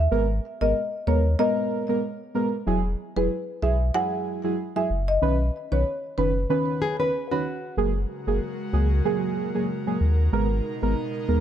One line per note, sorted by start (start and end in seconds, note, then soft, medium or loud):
0.11 0.40 G#1 loud
0.11 0.25 G#3 medium
0.11 0.25 B3 medium
0.11 0.25 A#4 loud
0.61 0.74 G#1 medium
0.61 0.72 G#3 medium
0.61 0.72 B3 medium
0.61 0.72 A#4 medium
0.61 0.90 D#5 medium
1.07 1.36 D#2 medium
1.07 1.21 G#3 medium
1.07 1.21 B3 medium
1.07 1.21 A#4 medium
1.07 1.36 C#5 medium
1.39 1.85 G#3 loud
1.39 1.85 B3 medium
1.39 1.85 A#4 loud
1.39 1.86 D#5 medium
1.89 2.00 G#3 medium
1.89 2.00 B3 medium
1.89 2.00 A#4 medium
2.35 2.48 G#3 medium
2.35 2.49 B3 medium
2.35 2.49 A#4 medium
2.67 2.95 E1 loud
2.67 2.80 F#3 loud
2.67 2.81 E4 medium
2.67 2.81 G#4 loud
3.16 3.29 E1 loud
3.16 3.27 F#3 medium
3.16 3.27 E4 medium
3.16 3.28 G#4 medium
3.16 3.45 B4 medium
3.62 3.91 B1 loud
3.62 3.76 F#3 medium
3.62 3.76 E4 medium
3.62 3.76 G#4 medium
3.62 3.91 E5 medium
3.94 4.40 F#3 loud
3.94 4.40 E4 medium
3.94 4.40 G#4 loud
3.94 4.41 F#5 loud
4.44 4.55 F#3 medium
4.44 4.55 E4 medium
4.44 4.55 G#4 medium
4.76 4.87 F#3 medium
4.76 4.87 E4 medium
4.76 4.87 G#4 medium
4.76 4.89 E5 medium
4.90 5.19 F#1 medium
5.08 5.21 D#5 medium
5.22 5.50 B1 loud
5.22 5.36 D#3 medium
5.22 5.36 C#4 medium
5.22 5.36 B4 loud
5.72 5.84 B1 loud
5.72 5.82 D#3 medium
5.72 5.83 C#4 medium
5.72 5.83 B4 medium
5.72 6.01 C#5 medium
6.18 6.46 F#1 loud
6.18 6.31 D#3 medium
6.18 6.32 C#4 medium
6.18 6.46 B4 medium
6.18 6.32 B4 medium
6.49 6.95 D#3 loud
6.49 6.95 C#4 medium
6.49 6.95 B4 loud
6.82 6.99 G#4 medium
6.99 7.10 D#3 medium
6.99 7.10 C#4 medium
6.99 7.30 B4 medium
6.99 7.11 B4 medium
7.31 7.42 D#3 medium
7.31 7.42 C#4 medium
7.31 7.75 F#4 medium
7.31 7.42 B4 medium
7.77 8.06 F#1 loud
7.77 10.30 C#3 medium
7.77 7.91 F#3 loud
7.77 10.30 G#3 medium
7.77 7.91 A#3 medium
7.77 10.30 F#4 medium
7.77 7.91 G#4 loud
7.77 11.40 A#4 medium
8.27 8.40 F#1 medium
8.27 8.38 F#3 medium
8.27 8.38 A#3 medium
8.27 8.38 G#4 medium
8.73 9.01 C#2 loud
8.73 8.87 F#3 medium
8.73 8.87 A#3 medium
8.73 8.87 G#4 medium
9.05 9.50 F#3 loud
9.05 9.51 A#3 medium
9.05 9.51 G#4 loud
9.55 9.66 F#3 medium
9.55 9.66 A#3 medium
9.55 9.66 G#4 medium
9.87 9.97 F#3 medium
9.87 9.98 A#3 medium
9.87 9.98 G#4 medium
10.01 10.29 D#2 loud
10.32 10.61 G#1 loud
10.32 11.40 B2 medium
10.32 10.46 G#3 medium
10.32 11.40 G#3 medium
10.32 10.46 B3 medium
10.32 11.40 D#4 medium
10.32 10.47 A#4 loud
10.82 10.95 G#1 loud
10.82 10.93 G#3 medium
10.82 10.93 B3 medium
10.82 10.93 A#4 medium
11.28 11.40 D#2 loud
11.28 11.40 G#3 medium
11.28 11.40 B3 medium
11.28 11.40 A#4 medium